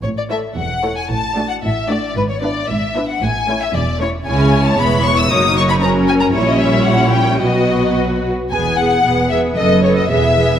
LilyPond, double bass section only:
\new Staff \with { instrumentName = "Double bass section" } { \clef bass \time 2/4 \key a \major \tempo 4 = 114 a,,4 e,,4 | a,,4 a,,4 | gis,,4 gis,,4 | a,,4 e,,4 |
\key e \major cis,4 e,,4 | fis,,2 | ais,,2 | b,,4. r8 |
e,,4 e,,4 | fis,,4 e,,4 | }